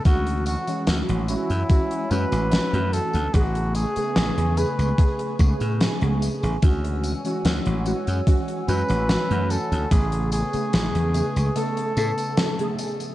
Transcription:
<<
  \new Staff \with { instrumentName = "Ambient pad" } { \time 4/4 \key a \major \tempo 4 = 73 <cis'' fis'' gis'' e'''>1 | <b' gis'' cis'''>1 | <cis'' fis'' e'''>1 | <b' cis'''>1 | }
  \new Staff \with { instrumentName = "Flugelhorn" } { \time 4/4 \key a \major fis'8 fis'8 r8 e'4 b'4 a'8 | fis'8 gis'4 b'4 r4. | r2 r8 b'4 a'8 | gis'8 gis'4. a'4. r8 | }
  \new Staff \with { instrumentName = "Synth keys" } { \time 4/4 \key a \major <e gis cis' fis'>8. <e gis cis' fis'>8. <e gis cis' fis'>8 <e gis cis' fis'>8 <e gis cis' fis'>8. <e a cis' fis'>8. | <cis a b gis'>8. <cis a b gis'>8. <cis a b gis'>8 <cis a b gis'>8 <cis a b gis'>8. <cis a b gis'>8. | <e gis cis' fis'>8. <e gis cis' fis'>8. <e gis cis' fis'>8 <e gis cis' fis'>8 <e gis cis' fis'>8. <e a cis' fis'>8. | <cis a b gis'>8. <cis a b gis'>8. <cis a b gis'>8 <cis a b a'>8 <cis a b a'>8. <cis a b gis'>8. | }
  \new Staff \with { instrumentName = "Slap bass" } { \clef bass \time 4/4 \key a \major d,8 r8 d,16 a,,16 r16 fis,16 r8 fis,16 a,,16 r16 fis,16 r16 d,16 | a,,8 r8 a,,16 e,16 r16 cis,16 r8 cis,16 a,16 r16 cis,16 r16 a,,16 | d,8 r8 d,16 a,,16 r16 fis,16 r8 fis,16 a,,16 r16 fis,16 r16 d,16 | a,,8 r8 a,,16 e,16 r16 cis,16 r8 a,16 r4 r16 | }
  \new DrumStaff \with { instrumentName = "Drums" } \drummode { \time 4/4 <hh bd tamb>16 hh16 <hh tamb>16 <hh tamb>16 <hh sn tamb>16 hh16 <hh tamb>16 <hh tamb>16 <hh bd tamb>16 hh16 <hh tamb>16 <hh tamb>16 <hh sn tamb>16 hh16 <hh tamb>16 <hh tamb>16 | <hh bd tamb>16 hh16 <hh tamb>16 <hh tamb>16 <hh sn tamb>16 hh16 <hh tamb>16 <hh tamb>16 <hh bd tamb>16 hh16 <hh bd tamb>16 <hh tamb>16 <hh sn tamb>16 hh16 <hh tamb>16 <hh tamb>16 | <hh bd tamb>16 hh16 <hh tamb>16 <hh tamb>16 <hh sn tamb>16 hh16 <hh tamb>16 <hh tamb>16 <hh bd tamb>16 hh16 <hh tamb>16 <hh tamb>16 <hh sn tamb>16 hh16 <hh tamb>16 <hh tamb>16 | <hh bd tamb>16 hh16 <hh tamb>16 <hh tamb>16 <hh sn tamb>16 hh16 <hh tamb>16 <hh tamb>16 <hh tamb>16 hh16 <hh tamb>16 <hh tamb>16 <hh sn tamb>16 hh16 <hh tamb>16 <hh tamb>16 | }
>>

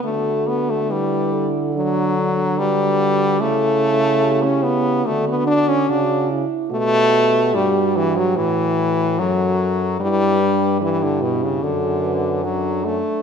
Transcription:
<<
  \new Staff \with { instrumentName = "French horn" } { \time 4/4 \key d \major \tempo 4 = 73 a'4 b'8 a'8 a'4 b'4 | a'4 g'4 fis'4. r8 | g'2 a'4 a'4 | b'4 g'4 a'8 b'8 a'8 r8 | }
  \new Staff \with { instrumentName = "French horn" } { \time 4/4 \key d \major fis'4 e'4 d'8 d'8 fis'4 | e'2 d'4 fis'8 e'8 | fis'2.~ fis'8 r8 | e'8 d'8 e'4 fis'4 d'4 | }
  \new Staff \with { instrumentName = "French horn" } { \clef bass \time 4/4 \key d \major a8 b16 a16 g8. r16 fis4 g4 | a4~ a16 cis'16 b8 a16 b16 d'16 cis'16 d'8 r8 | a4 g8 e16 fis16 e4 fis4 | g4 e16 d16 b,16 cis16 d4 fis8 a8 | }
  \new Staff \with { instrumentName = "French horn" } { \clef bass \time 4/4 \key d \major d1 | cis2 d4 cis8 r8 | b,4 g,4 a,4 fis,4 | g,2 fis,4. r8 | }
>>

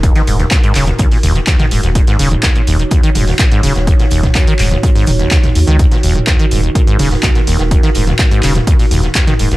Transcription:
<<
  \new Staff \with { instrumentName = "Ambient pad" } { \time 4/4 \key ees \minor \tempo 4 = 125 << { bes'1 | des''1~ | des''1 | bes'1~ |
bes'1 | } \\ { <ees ees' ges'>1~ | <ees ees' ges'>1~ | <ees ees' ges'>1~ | <ees ees' ges'>1~ |
<ees ees' ges'>1 | } >> }
  \new Staff \with { instrumentName = "Acid bass" } { \clef bass \time 4/4 \key ees \minor ees,16 ees16 aes,16 ees,16 bes,16 aes,16 des16 ees,16 ees,16 bes,16 ees,16 ees16 ees,16 ees16 aes,16 ees,16 | bes,16 aes,16 des16 ees,16 ees,16 bes,16 ees,16 ees16 ees,16 ees16 aes,16 ees,16 bes,16 aes,16 des16 ees,16 | ees,16 bes,16 ees,16 ees16 ees,16 ees16 aes,16 ees,16 bes,16 aes,16 ees16 ees,16 ees,16 ees,16 ees,16 ees16 | ees,16 bes,16 ees,16 ees16 ees,16 ees16 aes,16 ees,16 bes,16 aes,16 des16 ees,16 ees,16 bes,16 ees,16 ees16 |
ees,16 ees16 aes,16 ees,16 bes,16 aes,16 des16 ees,16 ees,16 bes,16 ees,16 ees16 ees,16 ees16 aes,16 ees,16 | }
  \new Staff \with { instrumentName = "Sub bass" } { \clef bass \time 4/4 \key ees \minor r8 ees,,16 r8. ees,,16 r8. ees,,16 r8. ees,,16 ees,,16 | r8 ees,,16 r8. ees,,16 r8. ees,,16 r8. ees,,16 ees,,16 | r8 ees,,16 r8. ees,,16 r8. ees,,16 r8. ees,16 des,16 | r8 ees,,16 r8. ees,,16 r8. ees,,16 r8. ees,,16 ees,,16 |
r8 ees,,16 r8. ees,,16 r8. ees,,16 r8. ees,,16 ees,,16 | }
  \new DrumStaff \with { instrumentName = "Drums" } \drummode { \time 4/4 <hh bd>16 <hh sn>16 <hh hho>16 <hh sn toml>16 <hc hh bd sn>16 hh16 <hc hh hho>16 <hh sn toml>16 <hh bd>16 <hh hho>16 <hh hho toml>16 <hh sn>16 <hc hh bd sn>16 <hh sn toml>16 <hh hho>16 <hh sn>16 | <hh bd>16 <hh sn>16 <hh hho>16 <hh toml>16 <hc hh bd sn>16 hh16 <hh hho>16 hh16 <hh bd>16 hh16 <hh hho toml>16 <hho sn>16 <hc hh bd sn>16 <hh sn>16 <hh hho>16 <hh sn>16 | <hh bd>16 <hh sn>16 <hh hho>16 <hh bd sn toml>16 <hc hh bd sn>16 hh16 <hc hh hho>16 <hh sn toml>16 <hh bd>16 <hh hho>16 <hh hho toml>16 <hh sn>16 <hc hh bd sn>16 <hh sn toml>16 <hh hho>16 <hh sn>16 | <hh bd>16 <hh sn>16 <hh hho>16 <hh toml>16 <hc hh bd sn>16 hh16 <hh hho>16 hh16 <hh bd>16 hh16 <hh hho toml>16 <hho sn>16 <hc hh bd sn>16 <hh sn>16 <hh hho>16 <hh sn>16 |
<hh bd>16 <hh sn>16 <hh hho>16 <hh sn toml>16 <hc hh bd sn>16 hh16 <hc hh hho>16 <hh sn toml>16 <hh bd>16 <hh hho>16 <hh hho toml>16 <hh sn>16 <hc hh bd sn>16 <hh sn toml>16 <hh hho>16 <hh sn>16 | }
>>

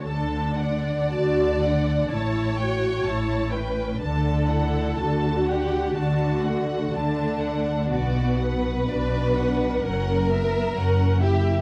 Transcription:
<<
  \new Staff \with { instrumentName = "Violin section" } { \time 4/4 \key d \major \tempo 4 = 62 a''8 fis''8 a''8 fis''8 a''8 g''8 a''8 g''8 | a''8 fis''8 a''8 fis''8 a''8 fis''8 a''8 fis''8 | d''8 fis''8 d''8 fis''8 fis''8 e''8 fis''8 e''8 | }
  \new Staff \with { instrumentName = "Violin section" } { \time 4/4 \key d \major a'8 d''4. cis''4. b'8 | a'4. g'8 fis'4 d'4 | fis'8 b'4. ais'4. g'8 | }
  \new Staff \with { instrumentName = "Viola section" } { \time 4/4 \key d \major d'4 fis'8 d'8 e'8 fis'8 e'8 cis'8 | d'8 e'8 fis'4 d'8 a4. | b4 d'4 cis'8 b8 cis'8 e'8 | }
  \new Staff \with { instrumentName = "Cello section" } { \clef bass \time 4/4 \key d \major d4 d4 a,4 a,4 | d4 d4 d4 d4 | b,4 b,4 fis,4 fis,4 | }
  \new Staff \with { instrumentName = "Double bass section" } { \clef bass \time 4/4 \key d \major d,4 d,4 a,,4 a,,4 | d,4 d,4 d,4 d,4 | b,,4 b,,4 fis,,4 fis,,4 | }
>>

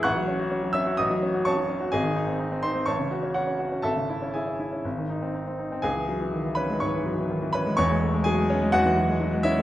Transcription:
<<
  \new Staff \with { instrumentName = "Grand piano" } { \time 4/4 \key cis \minor \tempo 4 = 126 <fis'' cis''' fis'''>4. <e'' e'''>8 <dis'' dis'''>4 <cis'' a'' cis'''>4 | <gis' dis'' gis''>4. <bis' bis''>8 <cis'' a'' cis'''>4 <fis' cis'' fis''>4 | <a' e'' a''>4 <gis' e'' gis''>2~ <gis' e'' gis''>8 r8 | <gis' gis''>4. <b' b''>8 <cis'' cis'''>4. <b' b''>8 |
<cis'' cis'''>4 <gis' gis''>4 <fis' fis''>4. <e' e''>8 | }
  \new Staff \with { instrumentName = "Grand piano" } { \clef bass \time 4/4 \key cis \minor a,,16 fis16 cis'16 fis'16 cis'16 fis16 cis'16 fis'16 a,,16 fis16 cis'16 fis'16 cis'16 fis16 cis'16 fis'16 | gis,,16 dis16 dis'16 bis16 dis'16 bis16 dis'16 bis16 a,,16 cis16 fis'16 cis'8 cis'16 fis'16 cis'16 | gis,,16 cis16 e'16 cis'16 e'16 cis'16 e'16 cis'16 gis,,16 dis16 dis'16 bis16 dis'16 bis16 dis'16 bis16 | cis,16 e16 fis16 e16 dis16 e16 cis'16 gis16 gis,16 e16 fis16 e16 dis16 e16 cis'16 gis16 |
<e,, e,>16 gis16 a16 gis16 fis16 gis16 cis'16 gis16 e,16 e16 fis16 gis16 fis16 gis16 cis'16 gis16 | }
>>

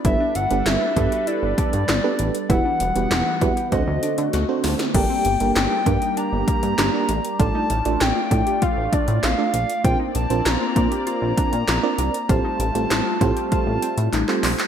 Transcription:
<<
  \new Staff \with { instrumentName = "Soft synth lead" } { \time 4/4 \key g \major \tempo 4 = 98 e''8 fis''8 e''4 d''2 | fis''2 dis''4. r8 | \key g \minor g''4 g''4 bes''2 | a''4 g''4 f''8 d''8 f''8 f''8 |
g''8 a''8 bes''4 bes''2 | a''2 a''4. r8 | }
  \new Staff \with { instrumentName = "FM electric piano" } { \time 4/4 \key g \major <b d' g' a' b'>8 r16 <b d' g' a' b'>8 r16 <b d' g' a' b'>4~ <b d' g' a' b'>16 r8 <b d' g' a' b'>8 r16 | <b e' fis' g' b'>8 r16 <b e' fis' g' b'>8 r16 <b e' fis' g' b'>8 <c' d' fis' a' c''>4 r16 <c' d' fis' a' c''>8 r16 | \key g \minor <bes d' g' a' bes'>8 r16 <bes d' g' a' bes'>8 r16 <bes d' g' bes'>4~ <bes d' g' bes'>16 r8 <bes d' g' bes'>8 r16 | <a d' f' a' d''>8 r16 <a d' f' a' d''>8 r16 <a d' f' a' d''>4~ <a d' f' a' d''>16 r8 <a d' f' a' d''>8 r16 |
<c' d' f' bes' c''>8 r16 <c' d' f' bes' c''>8 r16 <c' d' f' bes' c''>4~ <c' d' f' bes' c''>16 r8 <c' d' f' bes' d''>8 r16 | <c' f' g' a' c''>8 r16 <c' f' g' a' c''>8 r16 <c' f' g' a' c''>4~ <c' f' g' a' c''>16 r8 <c' f' g' a' c''>8 r16 | }
  \new Staff \with { instrumentName = "Synth pluck" } { \time 4/4 \key g \major e'16 d'8 r16 e'16 e'8 fis'16 e'8 d'8 e'8 r8 | e'16 d'8 r16 e'16 e'8 g'16 fis'8 d'8 fis'8 r8 | \key g \minor d'16 c'8 r16 d'16 d'8 ees'16 d'8 bes8 d'8 r8 | f'16 ees'8 r16 f'16 f'8 g'16 f'8 d'8 f'8 r8 |
f'16 ees'8 r16 f'16 f'8 g'16 f'8 d'8 f'8 r8 | f'16 ees'8 r16 f'16 f'8 g'16 f'8 c'8 ees'8 r8 | }
  \new Staff \with { instrumentName = "Analog synth pad" } { \time 4/4 \key g \major <g d' a' b'>1 | <e g b fis''>2 <d a c' fis'>2 | \key g \minor <g bes g' d''>1 | <a f'>1 |
<bes c' d''>1 | <g a f'>1 | }
  \new Staff \with { instrumentName = "Analog synth bass" } { \clef bass \time 4/4 \key g \major g,,16 r16 g,,16 g,,16 g,,16 r16 g,16 r8 g,,16 r16 g,16 g,,16 r16 a,,16 r16 | e,,16 r16 e,,16 e,,16 e,,16 r16 e,16 r16 d,16 d,16 r16 d16 d,16 r16 d,16 r16 | \key g \minor g,,16 r16 g,,16 g,,16 g,,16 r16 g,16 r8 g,,16 r16 g,16 g,,16 r16 a,,16 r16 | a,,16 r16 a,,16 a,,16 a,,16 r16 a,16 r8 a,,16 r16 a,16 a,,16 r16 bes,,16 r16 |
bes,,16 r16 bes,,16 bes,,16 bes,,16 r16 bes,16 r8 bes,,16 r16 bes,16 bes,,16 r16 c,16 r16 | a,,16 r16 a,,16 a,,16 a,,16 r16 a,16 r8 a,,16 r16 a,16 a,,16 r16 bes,,16 r16 | }
  \new DrumStaff \with { instrumentName = "Drums" } \drummode { \time 4/4 <hh bd>8 hh16 hh16 <hc hh sn>8 <hh bd>16 hh16 hh8 <hh bd>16 hh16 <hc hh sn>8 hh16 hh16 | <hh bd>8 hh16 hh16 <hc hh sn>8 <hh bd>16 hh16 <hh bd>8 hh16 hh16 <hh sn>8 <hho sn>16 <hh sn>16 | <cymc hh bd>8 hh16 hh16 <hc hh sn>8 <hh bd>16 hh16 hh8 <hh bd>16 hh16 <hc hh sn>8 hh16 hh16 | <hh bd>8 hh16 hh16 <hc hh sn>8 <hh bd>16 hh16 <hh bd>8 <hh bd>16 hh16 <hc hh sn>8 hh16 hh16 |
<hh bd>8 hh16 hh16 <hc hh sn>8 <hh bd>16 hh16 hh8 <hh bd>16 hh16 <hc hh sn>8 hh16 hh16 | <hh bd>8 hh16 hh16 <hc hh sn>8 <hh bd>16 hh16 <hh bd>8 hh16 hh16 <hc hh>16 hc16 <hc hho>16 <hc hh>16 | }
>>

